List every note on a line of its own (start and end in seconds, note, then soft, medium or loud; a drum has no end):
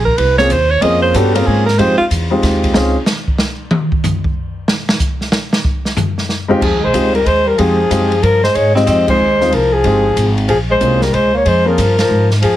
0.00 0.16 A#1 medium
0.05 0.19 A#4 medium
0.05 kick medium
0.18 0.49 C2 medium
0.18 0.38 B4 medium
0.18 kick soft
0.18 ride medium
0.38 0.49 A#3 medium
0.38 0.49 C4 medium
0.38 0.49 C#4 medium
0.38 0.49 F4 medium
0.38 0.50 G#4 medium
0.38 0.53 C#5 loud
0.38 snare soft
0.50 0.81 D#2 medium
0.50 0.72 C5 medium
0.50 kick soft
0.50 hi-hat pedal medium
0.50 ride medium
0.70 0.84 C#5 medium
0.81 1.13 F2 medium
0.81 1.13 A#3 medium
0.81 1.13 C4 medium
0.81 1.13 C#4 medium
0.81 1.13 F4 medium
0.81 1.14 G#4 medium
0.81 1.02 D#5 loud
0.81 kick soft
0.81 ride medium
1.02 1.18 C5 medium
1.13 1.45 G2 medium
1.13 1.32 B3 medium
1.13 1.33 C#4 medium
1.13 1.33 D4 medium
1.13 1.33 F#4 medium
1.13 1.36 G4 medium
1.13 1.33 A4 medium
1.13 kick soft
1.13 hi-hat pedal medium
1.13 ride medium
1.35 1.63 A#3 medium
1.35 1.63 C4 medium
1.35 1.63 C#4 medium
1.35 1.63 F4 medium
1.35 1.64 G#4 medium
1.35 1.48 A#4 loud
1.35 ride medium
1.46 1.78 G#2 medium
1.46 1.66 G#4 medium
1.46 kick soft
1.66 1.81 A#4 medium
1.66 snare soft
1.78 1.98 F2 medium
1.78 1.97 G#3 medium
1.78 1.97 C4 medium
1.78 1.97 D#4 medium
1.78 1.97 F4 medium
1.78 1.98 G4 medium
1.78 1.97 C5 loud
1.78 kick soft
1.78 ride medium
1.98 2.05 F4 medium
1.98 muted upright bass stroke soft
2.10 2.42 E2 medium
2.10 kick soft
2.10 hi-hat pedal medium
2.10 ride medium
2.30 2.72 G#3 medium
2.30 2.72 C4 medium
2.30 2.72 D#4 medium
2.30 2.73 F4 medium
2.30 2.73 G4 medium
2.42 2.74 D#2 medium
2.42 kick soft
2.42 snare soft
2.42 ride medium
2.63 kick medium
2.63 ride soft
2.74 2.95 C#2 medium
2.74 2.93 C4 medium
2.74 2.93 C#4 medium
2.74 2.93 D#4 medium
2.74 2.94 F4 medium
2.74 2.94 G#4 medium
2.74 snare loud
3.06 snare loud
3.06 hi-hat pedal medium
3.28 kick medium
3.38 snare medium
3.71 mid tom loud
3.92 kick medium
4.04 floor tom loud
4.04 hi-hat pedal medium
4.24 kick medium
4.68 snare loud
4.89 snare loud
5.00 kick medium
5.00 hi-hat pedal medium
5.21 snare soft
5.32 snare medium
5.53 snare loud
5.64 kick medium
5.85 snare soft
5.97 floor tom loud
5.97 hi-hat pedal medium
6.18 snare soft
6.29 snare soft
6.48 6.59 G#3 medium
6.48 6.60 C4 medium
6.48 6.60 D#4 medium
6.48 6.60 F4 medium
6.48 6.61 G4 loud
6.48 floor tom soft
6.61 6.72 F2 medium
6.61 6.82 F3 medium
6.61 6.86 G#4 medium
6.61 kick medium
6.61 crash medium
6.72 6.83 D#2 soft
6.80 6.93 C2 medium
6.80 7.11 G#3 medium
6.80 7.14 C5 medium
6.93 7.25 C#2 medium
6.93 7.12 G#3 medium
6.93 7.12 C4 medium
6.93 7.12 D#4 medium
6.93 7.12 F4 medium
6.93 7.13 G4 medium
6.93 kick soft
6.93 hi-hat pedal medium
6.93 ride medium
7.12 7.25 G3 medium
7.12 7.28 A#4 medium
7.12 ride soft
7.23 7.57 D#2 medium
7.23 7.46 G#3 medium
7.23 7.49 C5 medium
7.23 kick soft
7.23 ride medium
7.45 7.58 G3 medium
7.45 7.60 A#4 medium
7.57 7.89 F2 medium
7.57 8.22 F3 medium
7.57 7.77 G#3 medium
7.57 7.77 C4 medium
7.57 7.77 D#4 medium
7.57 7.77 F4 medium
7.57 7.78 G4 medium
7.57 8.25 G#4 medium
7.57 kick soft
7.57 ride medium
7.90 8.21 F#2 medium
7.90 8.09 G#3 medium
7.90 8.09 C4 medium
7.90 8.09 D#4 medium
7.90 8.09 F4 medium
7.90 8.10 G4 medium
7.90 kick soft
7.90 hi-hat pedal medium
7.90 ride medium
8.12 ride soft
8.22 8.54 G2 medium
8.22 8.43 F3 medium
8.22 8.43 A#4 medium
8.22 kick soft
8.22 ride medium
8.43 8.53 G#3 medium
8.43 8.57 C5 medium
8.43 snare medium
8.53 8.86 G#2 medium
8.53 8.74 G#3 medium
8.53 8.76 C#5 loud
8.53 kick soft
8.53 ride medium
8.75 9.05 G#3 medium
8.75 8.86 C4 medium
8.75 9.06 C4 medium
8.75 9.06 D#4 medium
8.75 9.06 F4 medium
8.75 9.06 G4 medium
8.75 8.87 D#5 loud
8.75 snare soft
8.86 9.18 F2 medium
8.86 9.06 C4 medium
8.86 9.08 D#5 loud
8.86 kick soft
8.86 snare soft
8.86 hi-hat pedal medium
8.86 ride medium
9.08 9.53 G#3 medium
9.08 9.19 G#3 medium
9.08 9.19 C4 medium
9.08 9.19 D#4 medium
9.08 9.19 F4 medium
9.08 9.19 G#4 medium
9.08 9.55 C5 loud
9.08 kick medium
9.08 crash medium
9.19 9.51 D#2 medium
9.40 9.50 G#3 medium
9.40 9.51 C4 medium
9.40 9.51 D#4 medium
9.40 9.51 F4 medium
9.40 9.51 G#4 medium
9.40 snare soft
9.51 9.83 C2 medium
9.51 9.72 F3 medium
9.51 9.74 A#4 medium
9.51 kick soft
9.51 ride medium
9.72 10.37 F3 medium
9.72 10.37 G#4 medium
9.84 10.15 G1 medium
9.84 10.03 G#3 medium
9.84 10.03 C4 medium
9.84 10.03 D#4 medium
9.84 10.03 F4 medium
9.84 10.04 G4 medium
9.84 kick soft
9.84 ride medium
10.16 10.47 G#1 medium
10.16 kick soft
10.16 hi-hat pedal soft
10.16 ride medium
10.38 ride soft
10.48 10.80 A#1 medium
10.48 10.58 F3 medium
10.48 10.59 G#4 medium
10.48 kick soft
10.48 ride medium
10.70 11.03 G#3 medium
10.70 11.04 C5 medium
10.80 11.12 C2 medium
10.80 10.99 A#3 medium
10.80 10.99 C4 medium
10.80 10.99 C#4 medium
10.80 11.00 F4 medium
10.80 11.00 G#4 medium
10.80 kick soft
10.80 hi-hat pedal medium
10.80 ride medium
11.01 11.15 G3 medium
11.01 11.16 A#4 medium
11.01 snare soft
11.13 11.44 C#2 medium
11.13 11.33 G#3 medium
11.13 11.34 C5 medium
11.13 kick soft
11.13 ride medium
11.34 11.47 A#3 medium
11.34 11.50 C#5 medium
11.45 11.77 F2 medium
11.45 11.67 G#3 medium
11.45 11.68 C5 medium
11.45 kick soft
11.45 ride medium
11.65 11.98 F3 medium
11.65 11.76 A#3 medium
11.65 11.76 C4 medium
11.65 11.76 C#4 medium
11.65 11.77 F4 medium
11.65 11.77 G#4 medium
11.65 11.99 A#4 medium
11.78 12.08 G2 medium
11.78 kick soft
11.78 hi-hat pedal medium
11.78 ride medium
11.99 12.29 F3 medium
11.99 12.30 A#4 medium
11.99 snare medium
11.99 ride medium
12.09 12.41 G#2 medium
12.30 snare soft
12.41 12.56 F2 medium
12.41 12.56 F3 medium
12.41 12.56 G#4 medium
12.41 kick soft
12.41 ride medium